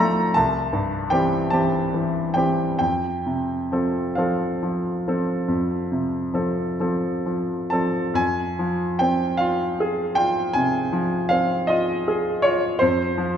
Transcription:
grand piano
Already playing: C2 C3 F3 E5 F5 G5 A#5 C6
0.00 A3 A4
0.34 C2 A5
0.73 G2
1.10 E3 C4 G4 G5
1.50 E3 C4 G4 A5
1.94 E3
2.34 E3 C4 G4 G5
2.79 F2 G5
3.26 C3
3.72 F3 C4 A4
4.15 F3 C4 A4 F5
4.63 F3
5.08 F3 C4 A4
5.48 F2
5.92 C3
6.34 F3 C4 A4
6.80 F3 C4 A4
7.26 F3
7.70 F3 C4 A4 A5
8.14 F2 G#5
8.59 F3
8.99 C4 G5
9.37 F4 F5
9.80 G#4
10.15 F4 G5
10.53 C3 G#5
10.93 F3
11.29 C4 F5
11.67 F4 D#5
12.08 G#4
12.42 F4 C#5
12.79 F2 C5
13.18 F3

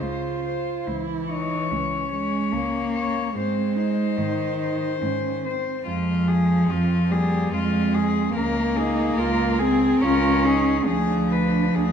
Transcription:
cello
Already playing: C#3 C5
0.01 C#2 F4
0.45 C5
0.86 C#2 E3 E4
1.30 D#4 C#5
1.71 C#2 C#4
2.13 G#3 C#5
2.53 C#2 A#3
2.95 C#5
3.35 G#2 G#3 C4 C5
3.76 D#4 C5
4.18 G#2 D#3
4.63 C5
5.02 G#2 C#4
5.45 C4 C5
5.85 F2 F3 G#3 F4
6.28 G#4
6.69 F2 C4 F4
7.10 G3 A#3 G#4
7.52 F2 G#3 C4 F4
7.94 G#4
8.35 C#2 A#3 C#4 A#4
8.76 D#4 G#4
9.16 C#2 F4 A#4
9.59 C4 G#4
10.01 C#2 C#4 F4 A#4
10.44 D#4 G#4
10.86 D2 F3 D4 G#4
11.32 B4
11.74 D2 G#4

